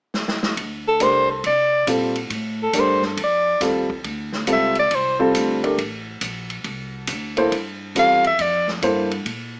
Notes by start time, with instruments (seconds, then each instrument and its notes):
0.14 snare
0.28 snare
0.43 snare
0.57 upright bass D2, kick, ride
0.88 soprano saxophone A4
1.00 upright bass C2, grand piano A3 D4 G4 A#4, soprano saxophone C5, kick, hi-hat pedal, ride
1.31 soprano saxophone A4
1.44 upright bass C3, soprano saxophone D5, kick, ride
1.87 upright bass A#2, grand piano G3 C4 F4 A4, kick, hi-hat pedal, ride
2.15 ride
2.30 upright bass A2, kick, ride
2.63 soprano saxophone A4
2.73 upright bass G2, grand piano A3 D4 G4 A#4, kick, hi-hat pedal, ride
2.80 soprano saxophone C5
3.02 snare
3.07 soprano saxophone A4
3.17 upright bass F2, kick, ride
3.23 soprano saxophone D5
3.61 upright bass D#2, grand piano G3 C4 F4 A4, kick, snare, hi-hat pedal, ride
3.90 kick
4.04 upright bass D2, kick, ride
4.33 snare
4.47 upright bass C#2, grand piano G3 C4 F4 A4, kick, hi-hat pedal, ride
4.53 soprano saxophone E5
4.75 ride
4.79 soprano saxophone D5
4.91 upright bass C2, kick, ride
4.95 soprano saxophone C5
5.19 grand piano G3 C4 F4 A4, kick
5.35 upright bass D2, kick, hi-hat pedal, ride
5.63 grand piano A3 D4 G4 A#4, ride
5.78 upright bass A1, kick, ride
6.21 upright bass A#1, kick, hi-hat pedal, ride
6.50 ride
6.64 upright bass C2, kick, ride
7.07 upright bass D2, kick, hi-hat pedal, ride
7.37 grand piano A#3 E4 A4 C5, ride
7.52 upright bass G2, kick, ride
7.95 upright bass E2, grand piano G3 C4 F4 A4, soprano saxophone F5, kick, hi-hat pedal, ride
8.24 soprano saxophone E5, ride
8.39 upright bass F2, soprano saxophone D5, kick, ride
8.68 snare
8.82 upright bass G2, grand piano A#3 E4 A4 C5, kick, hi-hat pedal, ride
9.11 ride
9.26 upright bass A#2, kick, ride